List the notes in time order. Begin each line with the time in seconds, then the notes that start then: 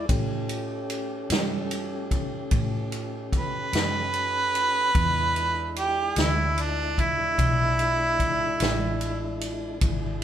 0.09 A2 A3 C#4 G4, kick, ride
0.49 ride
0.90 ride
1.30 G2, snare, ride
1.71 ride
2.11 kick, ride
2.51 A2, kick, ride
2.92 ride
3.33 B4, kick, ride
3.73 F#2, snare, ride
4.14 ride
4.55 ride
4.95 E2 G#3 D4 E4, kick, ride
5.36 ride
5.76 G4, ride
6.16 D2 E4, snare, ride
6.58 D4, ride
6.98 E4, kick, ride
7.38 B1, kick, ride
7.79 ride
8.20 kick, ride
8.60 A1, snare, ride
9.01 ride
9.41 ride
9.81 G#1 D4 E4 G#4, kick, ride